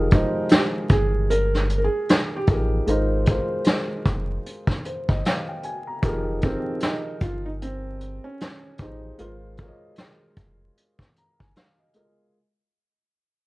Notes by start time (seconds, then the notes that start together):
Already playing: F1 F3 D#4 G4 G#4 A#4
0.10 F3 G#3 D#4 G4 C5, kick, closed hi-hat
0.49 G4, snare, closed hi-hat
0.89 G1 G#4, kick, closed hi-hat
1.30 A#4, closed hi-hat
1.54 snare
1.69 closed hi-hat
1.78 A#4
1.84 G#4
2.09 snare, closed hi-hat
2.36 G4
2.47 A1 F3 D#4 G4 G#4, kick, closed hi-hat
2.51 A#4
2.86 G#1 G#3 D#4 F4 A#4 C5, closed hi-hat
3.26 G#3 F4, kick, closed hi-hat
3.30 A#4 C5
3.64 snare, closed hi-hat
4.05 F1, kick, closed hi-hat
4.46 closed hi-hat
4.67 kick, snare
4.85 C5, closed hi-hat
5.09 G1 D#5, kick
5.25 F5, snare, closed hi-hat
5.48 G5
5.63 G#5, closed hi-hat
5.87 A#5
6.02 F1 F3 D#4 G4 G#4 A#4, kick, closed hi-hat
6.42 F3 C4 D#4 G4 G#4 A#4, kick, closed hi-hat
6.80 D#4, snare, closed hi-hat
7.20 G1 F4, kick, closed hi-hat
7.45 D#4
7.62 C4, closed hi-hat
8.01 closed hi-hat
8.24 C#4
8.40 snare, closed hi-hat
8.78 A1 F3 D#4 G4 G#4, kick, closed hi-hat
8.82 C5
9.18 G#1 G#3 F4 A#4 C5, closed hi-hat
9.57 G#3 F4 A#4, kick, closed hi-hat
9.61 C#5
9.68 D#5
9.96 snare, closed hi-hat
10.36 F1, kick, closed hi-hat
10.77 closed hi-hat
10.99 kick, snare
11.16 A#5, closed hi-hat
11.39 G1 G#5, kick
11.56 F5, snare, closed hi-hat
11.79 D#5
11.93 G#3 F4 A#4 D#5, closed hi-hat